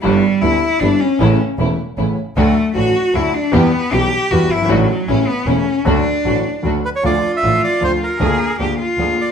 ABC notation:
X:1
M:3/4
L:1/16
Q:1/4=154
K:D
V:1 name="Bandoneon"
z12 | z12 | z12 | z12 |
z12 | z8 z2 B c | [K:Dm] d3 e3 d2 c2 B2- | B4 z6 d z |]
V:2 name="Cello"
G,4 E4 D2 C2- | C2 z8 z2 | A,4 F4 E2 D2 | B,4 G4 F2 E2 |
F,4 C2 B,2 C4 | D8 z4 | [K:Dm] F12 | _A4 G2 F6 |]
V:3 name="String section"
[G,B,E]2 z2 [G,B,E]2 z2 [G,B,E]2 z2 | [A,CE]2 z2 [A,CE]2 z2 [A,CE]2 z2 | [A,DF]2 z2 [A,DF]2 z2 [A,DF]2 z2 | [B,EG]2 z2 [B,EG]2 z2 [B,EG]2 z2 |
[A,DF]2 z2 [A,CE]2 z2 [A,CE]2 z2 | [A,DF]2 z2 [A,DF]2 z2 [A,DF]2 z2 | [K:Dm] [A,DF]2 z2 [A,DF]2 z2 [A,DF]2 z2 | [B,D_A]2 z2 [B,DA]2 z2 [B,DA]2 z2 |]
V:4 name="Grand piano" clef=bass
[G,,,G,,D,G,B,E]2 z2 [D,,D,G,B,E]2 z2 [G,,,G,,D,G,B,E]2 z2 | [A,,,A,,C,E,A,E]2 z2 [E,,,E,,C,E,A,E]2 z2 [A,,,A,,C,E,A,E]2 z2 | [D,,D,F,A,F]2 z2 [A,,,A,,D,F,A,F]2 z2 [D,,D,F,A,F]2 z2 | [E,,E,G,B,G]2 z2 [B,,,B,,E,G,B,G]2 z2 [E,,E,G,B,G]2 z/2 F,,,/2 G,,,/2 ^G,,,/2 |
[A,,,A,,D,F,A,F]2 z2 [A,,,A,,C,E,A,E]2 z2 [E,,,E,,C,E,A,E]2 z2 | [D,,D,F,A,F]2 z2 [A,,,A,,D,F,A,F]2 z2 [D,,D,F,A,F]2 z2 | [K:Dm] [D,,D,F,A,F]2 z2 [A,,,A,,D,F,A,F]2 z2 [D,,D,F,A,F]2 z2 | [D,,D,_A,B,F]2 z2 [D,,D,A,B,F]2 z2 [D,,D,A,B,F]2 z2 |]
V:5 name="Double bass" clef=bass
G,,,2 z2 D,,2 z2 G,,,2 z2 | A,,,2 z2 E,,,2 z2 A,,,2 z2 | D,,2 z2 A,,,2 z2 D,,2 z2 | E,,2 z2 B,,,2 z2 E,,2 G,,,2 |
A,,,2 z2 A,,,2 z2 E,,,2 z2 | D,,2 z2 A,,,2 z2 D,,2 z2 | [K:Dm] D,,2 z2 A,,,2 z2 D,,2 z2 | D,,2 z2 D,,2 z2 D,,2 z2 |]